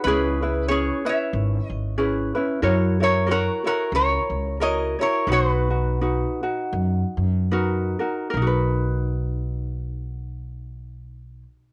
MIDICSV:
0, 0, Header, 1, 4, 480
1, 0, Start_track
1, 0, Key_signature, 5, "major"
1, 0, Tempo, 644468
1, 41, Time_signature, 4, 2, 24, 8
1, 2921, Tempo, 689655
1, 4361, Tempo, 764331
1, 5321, Tempo, 851064
1, 7694, End_track
2, 0, Start_track
2, 0, Title_t, "Resonator guitar played with a steel bar"
2, 0, Program_c, 0, 25
2, 28, Note_on_c, 0, 71, 91
2, 60, Note_on_c, 0, 68, 74
2, 499, Note_off_c, 0, 68, 0
2, 506, Note_off_c, 0, 71, 0
2, 509, Note_on_c, 0, 73, 85
2, 531, Note_on_c, 0, 68, 69
2, 779, Note_off_c, 0, 68, 0
2, 791, Note_on_c, 0, 76, 85
2, 794, Note_off_c, 0, 73, 0
2, 813, Note_on_c, 0, 73, 67
2, 1230, Note_off_c, 0, 76, 0
2, 1230, Note_on_c, 0, 75, 85
2, 1445, Note_off_c, 0, 75, 0
2, 1456, Note_off_c, 0, 73, 0
2, 2255, Note_on_c, 0, 70, 67
2, 2260, Note_on_c, 0, 73, 98
2, 2435, Note_off_c, 0, 70, 0
2, 2436, Note_off_c, 0, 73, 0
2, 2466, Note_on_c, 0, 66, 64
2, 2469, Note_on_c, 0, 70, 86
2, 2708, Note_off_c, 0, 66, 0
2, 2726, Note_off_c, 0, 70, 0
2, 2731, Note_on_c, 0, 66, 68
2, 2735, Note_on_c, 0, 70, 90
2, 2917, Note_off_c, 0, 66, 0
2, 2932, Note_off_c, 0, 70, 0
2, 2939, Note_on_c, 0, 70, 77
2, 2945, Note_on_c, 0, 73, 100
2, 3367, Note_off_c, 0, 70, 0
2, 3400, Note_off_c, 0, 73, 0
2, 3403, Note_on_c, 0, 70, 80
2, 3409, Note_on_c, 0, 75, 99
2, 3646, Note_off_c, 0, 70, 0
2, 3676, Note_off_c, 0, 75, 0
2, 3679, Note_on_c, 0, 70, 74
2, 3689, Note_on_c, 0, 73, 91
2, 3862, Note_off_c, 0, 70, 0
2, 3886, Note_off_c, 0, 73, 0
2, 3892, Note_on_c, 0, 66, 69
2, 3899, Note_on_c, 0, 72, 93
2, 4018, Note_off_c, 0, 72, 0
2, 4018, Note_on_c, 0, 71, 93
2, 5307, Note_off_c, 0, 66, 0
2, 5311, Note_off_c, 0, 71, 0
2, 7694, End_track
3, 0, Start_track
3, 0, Title_t, "Ukulele"
3, 0, Program_c, 1, 24
3, 51, Note_on_c, 1, 68, 75
3, 53, Note_on_c, 1, 61, 75
3, 53, Note_on_c, 1, 64, 86
3, 61, Note_on_c, 1, 71, 81
3, 306, Note_off_c, 1, 71, 0
3, 310, Note_off_c, 1, 64, 0
3, 315, Note_on_c, 1, 71, 57
3, 318, Note_off_c, 1, 68, 0
3, 319, Note_off_c, 1, 61, 0
3, 319, Note_on_c, 1, 64, 53
3, 330, Note_on_c, 1, 61, 44
3, 512, Note_on_c, 1, 68, 57
3, 515, Note_off_c, 1, 61, 0
3, 516, Note_off_c, 1, 64, 0
3, 517, Note_off_c, 1, 71, 0
3, 524, Note_on_c, 1, 61, 67
3, 525, Note_on_c, 1, 64, 64
3, 526, Note_on_c, 1, 71, 67
3, 774, Note_off_c, 1, 71, 0
3, 780, Note_off_c, 1, 64, 0
3, 783, Note_on_c, 1, 71, 53
3, 788, Note_off_c, 1, 68, 0
3, 789, Note_on_c, 1, 64, 49
3, 790, Note_off_c, 1, 61, 0
3, 799, Note_on_c, 1, 61, 45
3, 1471, Note_off_c, 1, 71, 0
3, 1472, Note_off_c, 1, 61, 0
3, 1473, Note_on_c, 1, 68, 70
3, 1474, Note_off_c, 1, 64, 0
3, 1475, Note_on_c, 1, 61, 75
3, 1477, Note_on_c, 1, 64, 74
3, 1485, Note_on_c, 1, 71, 83
3, 1740, Note_off_c, 1, 71, 0
3, 1746, Note_off_c, 1, 68, 0
3, 1747, Note_off_c, 1, 61, 0
3, 1748, Note_off_c, 1, 64, 0
3, 1749, Note_on_c, 1, 71, 67
3, 1756, Note_on_c, 1, 64, 59
3, 1766, Note_on_c, 1, 61, 50
3, 1944, Note_off_c, 1, 64, 0
3, 1950, Note_off_c, 1, 61, 0
3, 1953, Note_on_c, 1, 64, 88
3, 1954, Note_off_c, 1, 71, 0
3, 1956, Note_on_c, 1, 70, 90
3, 1961, Note_on_c, 1, 66, 91
3, 1961, Note_on_c, 1, 73, 104
3, 2225, Note_off_c, 1, 73, 0
3, 2226, Note_off_c, 1, 64, 0
3, 2227, Note_off_c, 1, 70, 0
3, 2230, Note_off_c, 1, 66, 0
3, 2234, Note_on_c, 1, 73, 56
3, 2239, Note_on_c, 1, 66, 50
3, 2246, Note_on_c, 1, 64, 47
3, 2428, Note_off_c, 1, 73, 0
3, 2431, Note_off_c, 1, 64, 0
3, 2431, Note_on_c, 1, 70, 67
3, 2432, Note_off_c, 1, 66, 0
3, 2440, Note_on_c, 1, 64, 64
3, 2441, Note_on_c, 1, 66, 72
3, 2448, Note_on_c, 1, 73, 73
3, 2704, Note_off_c, 1, 73, 0
3, 2708, Note_off_c, 1, 70, 0
3, 2711, Note_off_c, 1, 66, 0
3, 2712, Note_off_c, 1, 64, 0
3, 2713, Note_on_c, 1, 73, 59
3, 2720, Note_on_c, 1, 66, 52
3, 2724, Note_on_c, 1, 64, 49
3, 3387, Note_off_c, 1, 73, 0
3, 3392, Note_off_c, 1, 64, 0
3, 3394, Note_on_c, 1, 70, 60
3, 3401, Note_on_c, 1, 64, 64
3, 3406, Note_off_c, 1, 66, 0
3, 3409, Note_on_c, 1, 66, 67
3, 3409, Note_on_c, 1, 73, 70
3, 3654, Note_off_c, 1, 73, 0
3, 3660, Note_off_c, 1, 70, 0
3, 3661, Note_off_c, 1, 66, 0
3, 3663, Note_on_c, 1, 73, 55
3, 3664, Note_off_c, 1, 64, 0
3, 3670, Note_on_c, 1, 66, 46
3, 3680, Note_on_c, 1, 64, 46
3, 3864, Note_off_c, 1, 66, 0
3, 3864, Note_on_c, 1, 71, 77
3, 3867, Note_off_c, 1, 73, 0
3, 3868, Note_on_c, 1, 63, 85
3, 3869, Note_off_c, 1, 64, 0
3, 3872, Note_on_c, 1, 66, 74
3, 4144, Note_off_c, 1, 71, 0
3, 4146, Note_off_c, 1, 63, 0
3, 4148, Note_off_c, 1, 66, 0
3, 4161, Note_on_c, 1, 66, 52
3, 4162, Note_on_c, 1, 63, 47
3, 4368, Note_off_c, 1, 63, 0
3, 4368, Note_off_c, 1, 66, 0
3, 4376, Note_on_c, 1, 63, 63
3, 4376, Note_on_c, 1, 71, 60
3, 4382, Note_on_c, 1, 66, 66
3, 4628, Note_off_c, 1, 66, 0
3, 4632, Note_off_c, 1, 63, 0
3, 4632, Note_off_c, 1, 71, 0
3, 4636, Note_on_c, 1, 66, 60
3, 4640, Note_on_c, 1, 63, 52
3, 5317, Note_off_c, 1, 63, 0
3, 5317, Note_on_c, 1, 71, 73
3, 5319, Note_on_c, 1, 63, 75
3, 5323, Note_off_c, 1, 66, 0
3, 5325, Note_on_c, 1, 66, 82
3, 5325, Note_on_c, 1, 70, 75
3, 5580, Note_off_c, 1, 70, 0
3, 5582, Note_off_c, 1, 71, 0
3, 5583, Note_off_c, 1, 63, 0
3, 5586, Note_off_c, 1, 66, 0
3, 5587, Note_on_c, 1, 70, 56
3, 5593, Note_on_c, 1, 66, 52
3, 5600, Note_on_c, 1, 63, 49
3, 5755, Note_off_c, 1, 70, 0
3, 5761, Note_on_c, 1, 70, 82
3, 5793, Note_off_c, 1, 63, 0
3, 5793, Note_off_c, 1, 66, 0
3, 5800, Note_on_c, 1, 63, 75
3, 5829, Note_on_c, 1, 66, 92
3, 5857, Note_on_c, 1, 71, 92
3, 7694, Note_off_c, 1, 63, 0
3, 7694, Note_off_c, 1, 66, 0
3, 7694, Note_off_c, 1, 70, 0
3, 7694, Note_off_c, 1, 71, 0
3, 7694, End_track
4, 0, Start_track
4, 0, Title_t, "Upright bass"
4, 0, Program_c, 2, 32
4, 35, Note_on_c, 2, 37, 98
4, 659, Note_off_c, 2, 37, 0
4, 992, Note_on_c, 2, 32, 99
4, 1171, Note_off_c, 2, 32, 0
4, 1263, Note_on_c, 2, 32, 77
4, 1709, Note_off_c, 2, 32, 0
4, 1953, Note_on_c, 2, 42, 96
4, 2581, Note_off_c, 2, 42, 0
4, 2920, Note_on_c, 2, 37, 101
4, 3091, Note_off_c, 2, 37, 0
4, 3182, Note_on_c, 2, 37, 81
4, 3625, Note_off_c, 2, 37, 0
4, 3858, Note_on_c, 2, 35, 104
4, 4504, Note_off_c, 2, 35, 0
4, 4822, Note_on_c, 2, 42, 97
4, 5004, Note_off_c, 2, 42, 0
4, 5102, Note_on_c, 2, 42, 82
4, 5555, Note_off_c, 2, 42, 0
4, 5782, Note_on_c, 2, 35, 95
4, 7518, Note_off_c, 2, 35, 0
4, 7694, End_track
0, 0, End_of_file